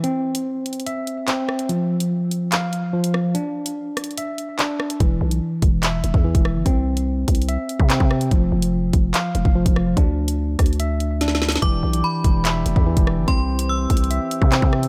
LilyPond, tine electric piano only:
\new Staff \with { instrumentName = "Tine electric piano" } { \time 4/4 \key c \major \tempo 4 = 145 c'2 e''4 c'4 | f2 f''4 f4 | d'2 e''4 d'4 | e2 e''4 e4 |
c'2 e''4 c'4 | f2 f''4 f4 | d'2 e''4 d'4 | e2 e''4 e4 |
c'2 e''4 c'4 | }